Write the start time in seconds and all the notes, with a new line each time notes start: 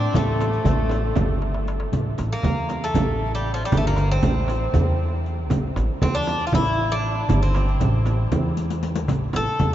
Already playing: D4
0.13 A1 A3, riq, darbuka dum, frame drum
0.40 riq, darbuka tek, frame drum
0.53 riq, darbuka ka
0.65 A1, riq, frame drum, darbuka dum
0.89 riq, darbuka tek, frame drum
1.15 G1, riq, frame drum, darbuka dum
1.42 darbuka tek
1.54 darbuka ka
1.67 riq, darbuka tek
1.80 darbuka ka
1.92 A1, riq, frame drum, darbuka dum
2.18 A1, riq, darbuka tek, frame drum
2.32 A#3
2.43 E2, riq, darbuka dum, frame drum
2.69 riq, darbuka tek, frame drum
2.84 A3
2.94 A1, riq, darbuka dum, frame drum
3.35 G3
3.46 riq, darbuka ka
3.54 F3
3.65 G3
3.72 G1, riq, frame drum, darbuka dum
3.77 A3
3.87 A#3
3.96 riq, darbuka tek, frame drum
4.11 C4
4.23 A1, riq, darbuka dum, frame drum
4.48 riq, darbuka tek, frame drum
4.74 E2, riq, darbuka dum, frame drum
5.25 riq, darbuka ka
5.50 A1, riq, frame drum, darbuka dum
5.76 A1, riq, darbuka tek, frame drum
6.02 E2 C4, riq, darbuka dum, frame drum
6.15 D4
6.27 riq, darbuka tek, frame drum
6.47 F4
6.52 A1 E4, riq, darbuka dum, frame drum
6.92 D4
7.04 riq, darbuka ka
7.29 G1, riq, darbuka dum, frame drum
7.43 C4
7.55 riq, darbuka tek, frame drum
7.67 riq, darbuka ka
7.80 A1, riq, darbuka dum, frame drum
8.06 riq, darbuka tek, frame drum
8.32 E2, riq, darbuka dum, frame drum
8.57 riq
8.70 riq
8.82 riq, darbuka ka
8.96 riq
9.08 A1, riq, darbuka dum, frame drum
9.33 A1 A4, riq, darbuka tek, frame drum
9.59 E2, riq, frame drum, darbuka dum